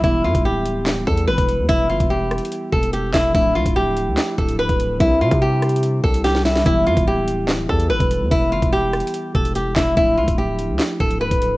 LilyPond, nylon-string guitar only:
\new Staff \with { instrumentName = "Nylon-string guitar" } { \time 4/4 \key e \phrygian \tempo 4 = 145 e'8 f'8 g'4. a'8 b'4 | e'8 f'8 g'4. a'8 g'8 e'8 | e'8 f'8 g'4. a'8 b'4 | e'8 f'8 g'4. a'8 g'8 e'8 |
e'8 f'8 g'4. a'8 b'4 | e'8 f'8 g'4. a'8 g'8 e'8 | e'8 f'8 g'4. a'8 b'4 | }